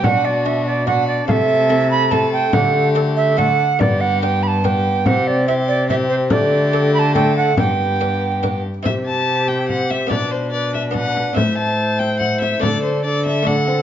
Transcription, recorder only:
0.04 F#5
0.25 D5
0.46 E5
0.66 D5
0.88 F#5
1.07 D5
1.28 E5 F5
1.91 B5
2.11 A5
2.32 G5
2.53 F#5
3.16 E5
3.38 F#5
3.80 D5
4.01 F#5
4.22 G5
4.43 B5
4.47 A5
4.65 G5
5.06 F#5
5.27 D5
5.48 E5
5.68 D5
5.89 E5
6.09 C5
6.31 D5
6.94 B5
6.99 A5
7.15 G5
7.37 F#5
7.58 G5
8.86 G4 A4
10.12 B4 C5
10.53 B4
10.95 B4
11.37 C5
12.63 A4
13.05 A4
13.48 A4

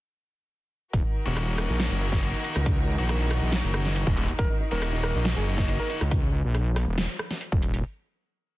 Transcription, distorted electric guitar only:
1.26 A#3 D#4 F#4
2.44 A#3 D#4 F#4
2.99 A#3 D#4 F#4
4.17 A#3 D#4 F#4
4.71 A#3 D#4 F#4
5.90 A#3 D#4 F#4

